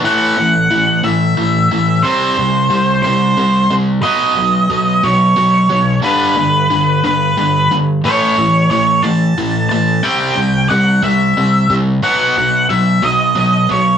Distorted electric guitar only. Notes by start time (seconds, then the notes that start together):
0.04 A2 E3 A3
0.38 A2 E3
0.71 A2 E3
1.03 A2 E3
1.37 A2 E3
1.71 A2 E3
2.04 C3 G3 C4
2.38 C3 G3
2.70 C3 G3
3.04 C3 G3
3.37 C3 G3
3.71 C3 G3
4.03 B2 F#3 B3
4.37 B2 F#3
4.70 B2 F#3
5.03 B2 F#3
5.37 B2 F#3
5.70 B2 F#3
6.02 G2 D3 G3
6.37 G2 D3
6.70 G2 D3
7.04 G2 D3
7.37 G2 D3
7.71 G2 D3
8.04 A2 E3 A3
8.38 A2 E3
8.71 A2 E3
9.04 A2 E3
9.38 A2 E3
9.71 A2 E3
10.04 C3 G3 C4
10.37 C3 G3
10.71 C3 G3
11.03 C3 G3
11.37 C3 G3
11.70 C3 G3
12.03 B2 F#3 B3
12.37 B2 F#3
12.70 B2 F#3
13.02 B2 F#3
13.35 B2 F#3
13.69 B2 F#3